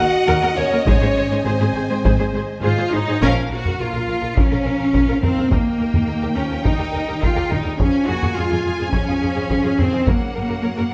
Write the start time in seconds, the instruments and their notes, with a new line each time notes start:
Already playing: french horn section F#4, violin section D#5 F#5, flute F#5
0.27 cello section D#2, double bass section D#2, viola section A#4
0.43 cello section D#2, viola section A#4
0.56 double bass section D#2, cello section D#2, french horn section C#4, viola section A#4, violin section C#5, flute C#5
0.72 cello section D#2, viola section A#4
0.85 double bass section G#1, cello section G#2, french horn section C#4, viola section G#4 C5, violin section C#5 G#5, flute C#5, taiko
1.02 cello section G#2, viola section G#4 C5
1.16 double bass section G#1, cello section G#2, viola section G#4 C5
1.31 cello section G#2, viola section G#4 C5
1.44 double bass section G#1, cello section G#2, french horn section C4, viola section G#4 C5, flute C5, violin section C5
1.60 cello section G#2, viola section G#4 C5
1.74 double bass section G#1, cello section G#2, viola section G#4 C5
1.89 cello section G#2, viola section G#4 C5
2.03 double bass section G#1, cello section G#2, viola section G#4 C5, taiko
2.19 cello section G#2, viola section G#4 C5
2.33 double bass section G#1, cello section G#2, viola section G#4 C5
2.62 double bass section G#1, cello section G#2 F4, french horn section G#3, viola section G#4 C5
2.78 cello section G#2, viola section G#4 C5
2.92 double bass section G#1, cello section G#2 D#4, french horn section F#3, viola section G#4 C5
3.08 cello section G#2, viola section G#4 C5
3.20 double bass section A#1, french horn section F3, cello section C#4, viola section A#4, violin section C#5 F5, taiko
3.49 double bass section A#1, french horn section A#3, cello section F#4, violin section A#4, viola section A#4
3.65 double bass section A#1, violin section F4, viola section A#4, taiko low-mid
3.78 double bass section A#1, french horn section A#3, cello section F4, viola section A#4, violin section C#5
3.94 double bass section A#1, violin section F4, viola section A#4
4.08 double bass section A#1, viola section A#4, violin section A#4
4.22 double bass section A#1, violin section F4, viola section A#4
4.34 double bass section A#1, french horn section F3, cello section C#4, viola section A#4, taiko
4.39 violin section C#5
4.51 double bass section A#1, violin section F4, viola section A#4
4.65 double bass section A#1, viola section A#4, violin section A#4
4.78 double bass section A#1, violin section F4, viola section A#4
4.93 double bass section A#1, viola section A#4, violin section C#5, taiko
5.08 double bass section A#1, violin section F4, viola section A#4
5.21 double bass section A#1, french horn section D#3, cello section C4, viola section A#4, violin section A#4, taiko low-mid
5.37 double bass section A#1, violin section F4, viola section A#4
5.50 double bass section D#2, french horn section D#3, cello section A#3, viola section A#4, violin section D#5 G5, taiko
5.79 double bass section D#2, violin section A#4, viola section A#4
5.93 double bass section D#2, violin section G4, viola section A#4, taiko low-mid
6.07 double bass section D#2, viola section A#4, violin section D#5
6.22 double bass section D#2, violin section G4, viola section A#4
6.36 double bass section D#2, french horn section F3, cello section C#4, viola section A#4, violin section A#4
6.50 double bass section D#2, violin section G4, viola section A#4
6.64 double bass section D#2, french horn section G3, cello section D#4, viola section A#4, violin section D#5, taiko
6.77 double bass section D#2, violin section G4, viola section A#4
6.91 double bass section D#2, violin section A#4, viola section A#4
7.06 double bass section D#2, violin section G4, viola section A#4
7.19 double bass section D#2, french horn section G#3, cello section F4, viola section A#4, violin section D#5, taiko
7.35 double bass section D#2, violin section G4, viola section A#4
7.49 double bass section D#2, french horn section G3, cello section D#4, violin section A#4, viola section A#4, taiko low-mid
7.63 double bass section D#2, violin section G4, viola section A#4
7.77 double bass section F2, french horn section F3, cello section C#4, viola section G#4, violin section C#5 G#5, taiko
8.06 double bass section F2, french horn section A#3, cello section F#4, violin section G#4, viola section G#4
8.21 double bass section F2, violin section F4, viola section G#4, taiko low-mid
8.36 double bass section F2, french horn section G#3, cello section F4, viola section G#4, violin section C#5
8.49 double bass section F2, violin section F4, viola section G#4
8.64 double bass section F2, violin section G#4, viola section G#4
8.78 double bass section F2, violin section F4, viola section G#4
8.91 double bass section F2, french horn section F3, cello section C#4, viola section G#4, violin section C#5, taiko
9.06 double bass section F2, violin section F4, viola section G#4
9.20 double bass section F2, violin section G#4, viola section G#4
9.34 double bass section F2, violin section F4, viola section G#4
9.48 double bass section F2, viola section G#4, violin section C#5, taiko
9.62 double bass section F2, violin section F4, viola section G#4
9.78 double bass section F2, french horn section D#3, cello section C4, viola section G#4, violin section G#4, taiko low-mid
9.91 double bass section F2, violin section F4, viola section G#4
10.05 double bass section F#2, french horn section C#3, cello section A#3, viola section A#4, violin section C#5 F#5, taiko
10.33 double bass section F#2, violin section A#4, viola section A#4
10.48 double bass section F#2, violin section F#4, viola section A#4
10.62 double bass section F#2, viola section A#4, violin section C#5
10.76 double bass section F#2, violin section F#4, viola section A#4
10.90 violin section A#4, viola section A#4